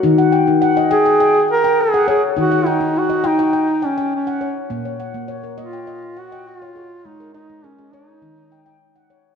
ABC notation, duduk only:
X:1
M:4/4
L:1/16
Q:1/4=103
K:Bbphr
V:1 name="Duduk"
z6 A4 B2 A2 A2 | G2 E2 G2 E4 D2 D3 z | z6 F4 G2 F4 | E2 E2 D2 E6 z4 |]